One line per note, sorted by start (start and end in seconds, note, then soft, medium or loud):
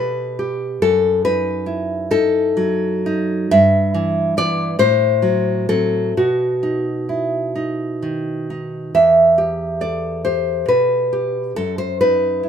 0.00 0.82 B2 medium
0.00 0.38 G4 medium
0.00 0.39 A4 soft
0.00 0.79 B4 medium
0.39 0.83 G4 medium
0.82 3.46 F#2 medium
0.82 1.23 A4 loud
1.25 2.09 D#4 medium
1.25 2.07 B4 loud
1.66 3.04 E4 soft
2.11 3.05 D#4 medium
2.11 3.46 A4 loud
2.57 3.50 F#3 medium
3.06 3.51 D#4 medium
3.51 4.76 G2 medium
3.51 4.34 E5 loud
3.94 4.36 E3 medium
4.37 4.75 E3 medium
4.37 4.75 B3 medium
4.37 4.78 D5 loud
4.79 6.12 A2 medium
4.79 5.65 C5 loud
5.22 5.68 F#3 medium
5.69 6.12 F#3 medium
5.69 6.12 C4 medium
5.69 6.14 A4 medium
6.17 8.92 B2 medium
6.17 7.52 F#4 medium
6.63 7.54 D#4 medium
7.09 8.49 E4 soft
7.55 8.49 D#4 soft
8.02 8.95 D#3 soft
8.50 8.96 D#4 soft
8.95 10.68 E2 medium
8.95 9.79 E5 medium
9.38 10.24 G4 soft
9.81 11.11 A4 soft
9.81 10.23 D5 medium
10.25 11.11 G4 soft
10.25 10.66 C5 medium
10.68 11.56 B2 soft
10.68 11.52 B4 medium
11.13 11.56 G4 soft
11.56 12.49 F#2 medium
11.56 11.78 A4 medium
11.78 12.00 C5 medium
12.01 12.49 D#4 soft
12.01 12.49 B4 medium
12.43 12.49 E4 soft